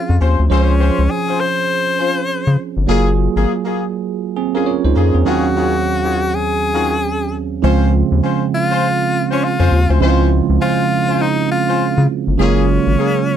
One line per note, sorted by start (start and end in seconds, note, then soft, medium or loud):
0.00 0.46 F3 medium
0.00 0.46 C4 medium
0.00 0.47 C#4 medium
0.00 0.17 F4 loud
0.00 0.47 G#4 medium
0.09 0.19 F2 medium
0.20 0.36 D#2 medium
0.20 0.42 C#4 medium
0.20 0.42 F4 medium
0.20 0.42 C5 medium
0.39 0.49 D2 medium
0.49 0.91 C#2 loud
0.49 2.83 F3 medium
0.49 0.72 C#4 medium
0.49 2.84 C#4 medium
0.49 1.12 C#4 medium
0.49 0.72 F4 medium
0.49 2.85 G#4 medium
0.49 2.84 C5 medium
0.49 0.72 C5 loud
0.80 1.01 C#4 medium
0.80 1.02 F4 medium
0.80 1.02 C5 medium
0.99 1.08 C#2 medium
1.11 1.42 G#4 loud
1.28 1.45 C#4 medium
1.28 1.45 F4 medium
1.28 1.45 C5 medium
1.40 2.59 C5 loud
1.99 2.20 C#4 medium
1.99 2.20 F4 medium
1.99 2.21 C5 medium
2.47 2.57 C#3 loud
2.77 2.86 G1 medium
2.87 3.28 F#1 loud
2.87 4.33 F#3 medium
2.87 4.33 A#3 medium
2.87 3.09 A#3 loud
2.87 3.10 F4 medium
2.87 4.34 F4 medium
2.87 3.10 G#4 loud
2.87 4.34 G#4 medium
3.35 3.46 G#1 medium
3.35 3.52 A#3 medium
3.35 3.53 F4 medium
3.35 3.53 G#4 medium
3.65 3.82 A#3 medium
3.65 3.82 F4 medium
3.65 3.82 G#4 medium
4.37 4.54 C4 medium
4.37 4.54 G#4 medium
4.54 4.71 A#3 medium
4.54 4.66 C#4 medium
4.54 4.71 F4 medium
4.54 4.71 G#4 medium
4.54 4.66 A#4 medium
4.66 4.84 F4 medium
4.66 4.83 C#5 medium
4.84 4.94 C#2 medium
4.84 4.96 D#4 medium
4.84 4.95 C5 medium
4.95 5.11 F2 medium
4.95 5.17 A#3 medium
4.95 5.14 C#4 medium
4.95 5.17 F4 medium
4.95 5.17 G#4 medium
4.95 5.13 A#4 medium
5.14 5.24 E2 medium
5.14 5.43 C4 medium
5.14 5.26 G#4 medium
5.25 7.59 D#2 medium
5.25 5.47 D#3 loud
5.25 7.59 F#3 medium
5.25 5.47 C#4 medium
5.25 7.59 C#4 medium
5.25 5.47 F4 medium
5.25 5.47 F#4 medium
5.25 6.36 F#4 medium
5.25 5.47 G#4 loud
5.25 7.60 G#4 medium
5.25 7.60 F5 medium
5.55 5.77 D#3 medium
5.55 5.77 C#4 medium
5.55 5.77 F4 medium
5.55 5.77 F#4 medium
5.55 5.77 G#4 medium
6.03 6.20 D#3 medium
6.03 6.20 C#4 medium
6.03 6.20 F4 medium
6.03 6.20 F#4 medium
6.03 6.20 G#4 medium
6.34 7.34 G#4 loud
6.74 6.95 D#3 medium
6.74 6.96 C#4 medium
6.74 6.96 F4 medium
6.74 6.96 F#4 medium
6.74 6.96 G#4 medium
7.62 8.03 C#2 loud
7.62 9.96 C#3 medium
7.62 9.97 F3 medium
7.62 9.97 G#3 medium
7.62 9.97 C4 medium
7.62 7.91 C#4 loud
7.62 7.91 F4 medium
7.62 9.97 F4 medium
7.62 7.91 C5 loud
8.12 8.21 D#2 medium
8.22 8.44 C#4 medium
8.22 8.44 F4 medium
8.22 8.44 C5 medium
8.54 9.27 F4 loud
8.70 8.87 C#4 medium
8.70 8.87 F4 medium
8.70 8.87 C5 medium
9.30 9.47 C#4 medium
9.30 9.46 C#4 medium
9.30 9.47 F4 medium
9.30 9.47 C5 medium
9.44 9.91 F4 loud
9.59 9.69 F2 medium
9.59 9.76 C#4 medium
9.59 9.76 F4 medium
9.59 9.77 C5 medium
9.72 9.87 D#2 medium
9.89 9.99 D2 loud
9.89 10.00 C#4 medium
9.89 10.00 F4 medium
9.89 10.00 C5 medium
10.00 10.41 C#2 loud
10.00 12.34 C#3 medium
10.00 12.34 F3 medium
10.00 12.35 G#3 medium
10.00 12.35 C4 medium
10.00 10.29 C#4 loud
10.00 10.10 E4 medium
10.00 10.29 F4 medium
10.00 10.29 C5 loud
10.09 12.39 F4 medium
10.49 10.59 C#2 loud
10.60 10.82 C#4 medium
10.60 10.82 F4 medium
10.60 11.23 F4 loud
10.60 10.82 C5 medium
11.08 11.25 C#4 medium
11.08 11.25 F4 medium
11.08 11.25 C5 medium
11.22 11.50 D#4 loud
11.51 12.06 F4 medium
11.67 11.84 C#4 medium
11.67 11.84 F4 medium
11.67 11.85 C5 medium
11.98 12.07 C#3 loud
12.27 12.37 G1 medium
12.38 12.79 F#1 loud
12.38 13.37 C#3 medium
12.38 13.37 F#3 medium
12.38 13.37 G#3 medium
12.38 12.66 A#3 loud
12.38 13.37 A#3 medium
12.38 13.37 C#4 medium
12.38 12.66 F4 medium
12.38 13.37 F4 medium
12.38 12.67 G#4 loud
12.87 12.96 G#1 medium
12.98 13.19 A#3 medium
12.98 13.20 F4 medium
12.98 13.20 G#4 medium